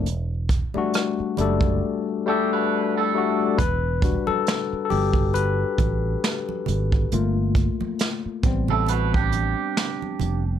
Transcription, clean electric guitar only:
X:1
M:4/4
L:1/16
Q:"Swing 16ths" 1/4=68
K:Em
V:1 name="Clean electric guitar"
z8 z2 [DG] [FB]2 [EA]3 | z16 | z6 z [EA] [FB] [DG]6 z |]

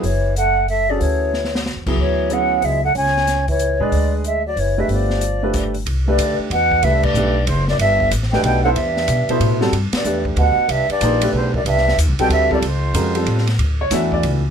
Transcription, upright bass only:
X:1
M:3/4
L:1/8
Q:"Swing" 1/4=186
K:C#phr
V:1 name="Upright bass" clef=bass
F,,,6 | D,,4- (3D,, E,, C,, | D,,4 C,,2 | C,,4- C,, A,, |
D,,4 F,,,2 | =G,,,6 | [K:Clyd] C,,2 D,, z E,,2 | C,,2 B,,,2 F,,,2 |
G,,,2 A,,,2 B,,,2 | E,,2 B,, z A,,2 | G,, z E,,2 D,, z | C,, z _B,,,2 =B,,,2 |
C,,2 (3_E,, C,, B,,, D,,2 | ^C,,2 ^E,,2 A,,2 | [K:D] D,,2 E,,2 C,,2 |]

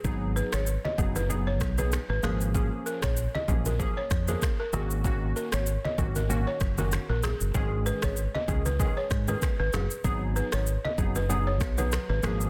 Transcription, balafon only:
X:1
M:4/4
L:1/16
Q:"Swing 16ths" 1/4=96
K:G#dor
V:1 name="Balafon"
z2 B c z d z B z c z B z B A z | z2 A c z d z A z c z A z A G z | z2 A c z d z A z c z A z A G z | z2 B c z d z B z c z B z B G z |
z2 B c z d z B z c z B z B A z |]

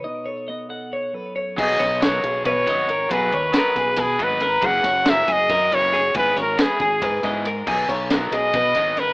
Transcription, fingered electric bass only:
X:1
M:7/8
L:1/8
Q:1/4=138
K:B
V:1 name="Fingered electric bass" clef=bass
z6 z | B,,, B,,,2 B,,, B,, G,,,2 | B,,, D,, z B,,, B,, G,,,2 | F,,, F,,,2 F,,, F,, F,,,2 |
G,,, G,,, z G,,, G,, G,,2 | B,,, B,,,2 B,,, B,, G,,,2 |]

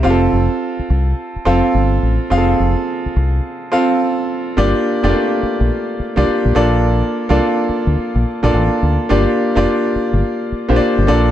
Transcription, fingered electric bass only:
X:1
M:4/4
L:1/16
Q:"Swing 16ths" 1/4=106
K:Gm
V:1 name="Fingered electric bass" clef=bass
F,,,2 F,,, z3 C,,2 z2 F,,, z G,,,2 A,,, z | F,,,2 F,,, z3 C,,2 z8 | G,,, z2 F,,, z3 B,,, z3 C,, z B,,, B,,,2- | B,,,2 z C,, z3 D,, z B,,, z B,,, A,,, z D,, z |
G,,, z2 F,,, z3 G,,, z3 B,,, z G,,, B,,,2 |]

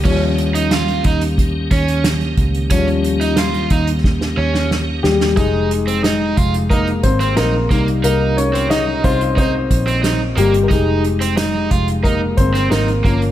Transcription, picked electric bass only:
X:1
M:4/4
L:1/8
Q:1/4=90
K:Fm
V:1 name="Picked electric bass" clef=bass
E,,3 E,,2 E,,2 D,, | E,,3 E,,2 E,,2 E,, | F,,,3 F,,,2 A,,, B,,, C,, | C,,3 C,,2 B,,,2 G,,, |
F,,,3 F,,,2 G,,, A,,, G,,, |]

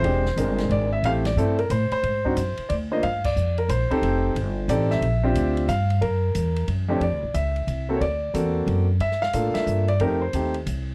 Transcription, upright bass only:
X:1
M:3/4
L:1/8
Q:"Swing" 1/4=180
K:F
V:1 name="Upright bass" clef=bass
E,,,2 G,,,2 ^G,,,2 | A,,,2 G,,2 A,, z | _A,,2 _G,, z D,,2 | G,,2 F,,2 B,,, z |
F,,,2 G,,,2 A,,,2 | B,,,2 D,,2 G,,2 | _G,,2 _F,,2 G,,2 | (3F,, D,, C,, _D,,2 C,,2 |
D,,2 E,,2 ^F,,2 | G,,2 A,, z G,,2 | F,,2 _E,,2 C,,2 |]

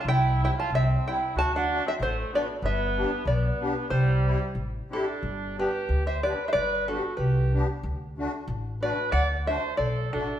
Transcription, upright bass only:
X:1
M:2/4
L:1/8
Q:"Swing" 1/4=92
K:C
V:1 name="Upright bass" clef=bass
C,,2 C,, z | D,,2 A,,, z | G,,,2 B,,, z | C,,2 A,,, z |
[K:G] G,,,2 D,,2 | G,,,2 C,,2 | D,,2 A,,,2 | D,,2 B,,, A,,, |]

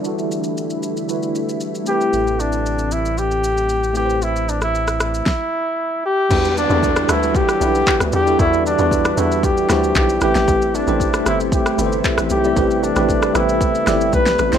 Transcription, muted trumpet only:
X:1
M:4/4
L:1/16
Q:1/4=115
K:Em
V:1 name="Muted trumpet"
z12 z2 G2- | G2 D4 E2 G6 G2 | E2 D E3 E8 G2- | G2 D4 E2 G6 G2 |
E2 D4 E2 G4 G2 G2- | G2 D4 E2 G4 z2 G2- | G2 D4 E6 B3 c |]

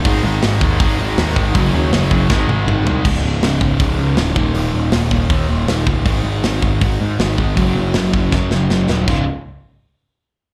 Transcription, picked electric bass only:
X:1
M:4/4
L:1/8
Q:1/4=159
K:Abmix
V:1 name="Picked electric bass" clef=bass
A,,, A,,, A,,, E,, A,,, A,,, E,, A,,, | G,,, E,, G,,, G,,, A,,, A,,, A,,, C,, | D,,, D,,, D,,, D,,, D,,, D,, =D,,, E,,, | E,,, E,,, E,,, E,,, E,, E,,, E,,, D,,, |
A,,, A,,, A,,, A,,, A,,, A,, A,,, A,,, | G,,, G,,, G,,, G,,, G,, G,,, G,,, E,,, | D,,, z6 z |]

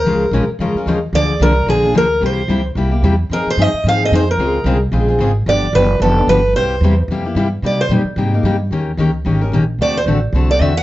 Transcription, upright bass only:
X:1
M:4/4
L:1/8
Q:"Swing" 1/4=222
K:Cphr
V:1 name="Upright bass" clef=bass
D,,2 B,,, z F,, z E,,2 | =D,,2 C,,2 B,,,2 D,,2 | C,,2 D,,2 C,,2 =E,,2 | F,, z G,, z A,,2 F,,2 |
D,,2 C,,2 B,,,2 A,,,2 | G,,,2 _G,,,2 F,,,2 =G,,,2 | C,,2 =E,,2 F,,2 G,,2 | [K:Eb] C,2 B,, z A,,2 G,,2 |
E,,2 _D,,2 A,,,2 B,,,2 | D,,2 =A,,,2 C,,2 =E,,2 |]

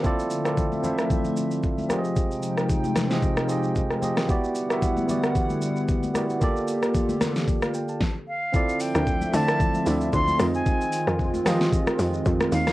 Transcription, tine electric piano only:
X:1
M:4/4
L:1/16
Q:"Swing 16ths" 1/4=113
K:F
V:1 name="Tine electric piano"
[CEFAd]2 z [CEFAd]2 z [CEFAc]6 z2 [CFG_Ad_e]2- | [CFG_Ad_e]4 z3 [CFGAe]2 z [CFGAe]3 z [CFGAe]2 | [=B,E^FGd]2 z [B,EFGe]2 z [B,EFGd]6 z2 [B,EFGd]2 | [B,FGAd]6 z3 f g a2 z3 |
[CEFAd]4- [CEFAd] z [CEFAd] [CEFAc]2 z [CEFAd]4 [C_EF_A_e]2- | [C_EF_A_e]4 z2 [CFGAe]6 z4 |]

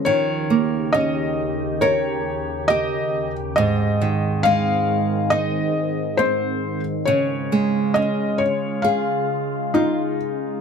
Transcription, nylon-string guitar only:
X:1
M:4/4
L:1/8
Q:1/4=68
K:Db
V:1 name="Nylon-string guitar"
E, B, D2 B2 =G2 | A,, E, A,2 E2 C2 | D, A, D2 A2 F2 |]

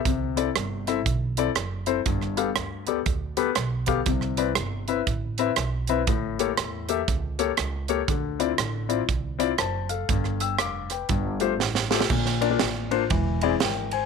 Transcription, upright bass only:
X:1
M:4/4
L:1/8
Q:"Swing" 1/4=120
K:C
V:1 name="Upright bass" clef=bass
C,,2 G,,,2 B,,,2 ^F,,,2 | G,,,2 D,,2 D,,2 B,,,2 | C,,2 G,,,2 A,,,2 B,,,2 | A,,,2 E,,2 ^C,,2 C,,2 |
D,,2 A,,,2 C,,2 ^F,,,2 | G,,,2 F,,,2 G,,,2 A,,,2 | _B,,,2 A,,,2 E,,,2 ^G,,,2 |]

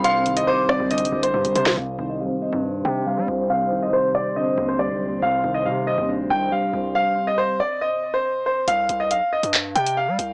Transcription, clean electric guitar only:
X:1
M:4/4
L:1/8
Q:1/4=139
K:Cm
V:1 name="Clean electric guitar" clef=bass
[C,G,D] E, G, C D,2 G,2 | C, E, G, C D2 G,2 | C, E, G, C D,2 G,2 | C, E, G, C D2 G,2- |
G,3 z4 z | z8 |]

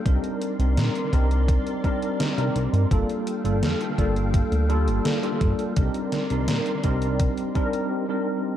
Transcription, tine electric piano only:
X:1
M:4/4
L:1/16
Q:1/4=84
K:Cdor
V:1 name="Tine electric piano"
[G,CDEB]3 [G,CDEB]3 [G,CDEB]4 [G,CDEB]3 [G,CDEB]3 | [G,B,DFA]3 [G,B,DFA]3 [G,B,DFA]4 [G,B,DFA]3 [G,B,DFA]3 | [G,CDEB]3 [G,CDEB]3 [G,CDEB]4 [G,CDEB]3 [G,CDEB]3 |]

